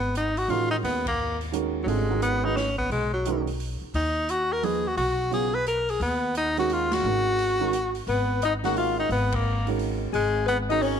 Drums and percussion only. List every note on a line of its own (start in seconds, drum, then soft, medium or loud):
0.15 closed hi-hat soft
0.37 open hi-hat soft
0.50 open hi-hat soft
0.85 open hi-hat soft
1.06 kick medium
1.06 ride medium
1.41 open hi-hat soft
1.53 closed hi-hat soft
1.88 open hi-hat soft
2.22 closed hi-hat soft
2.57 snare soft
2.57 open hi-hat soft
2.78 kick soft
2.91 open hi-hat soft
3.25 closed hi-hat soft
3.47 open hi-hat soft
3.60 open hi-hat soft
3.94 open hi-hat soft
4.29 closed hi-hat soft
4.63 open hi-hat soft
4.98 open hi-hat soft
5.32 open hi-hat soft
5.67 closed hi-hat soft
5.89 open hi-hat soft
6.01 open hi-hat soft
6.35 closed hi-hat soft
6.57 open hi-hat soft
6.70 open hi-hat soft
6.92 snare medium
6.92 ride medium
7.39 open hi-hat soft
7.73 closed hi-hat soft
7.95 open hi-hat soft
8.07 open hi-hat soft
8.42 closed hi-hat soft
8.64 snare soft
8.64 open hi-hat soft
8.76 open hi-hat soft
9.11 open hi-hat soft
9.32 kick medium
9.32 ride medium
9.67 open hi-hat soft
9.79 open hi-hat soft
10.14 open hi-hat soft
10.48 closed hi-hat soft
10.70 open hi-hat soft
10.82 open hi-hat soft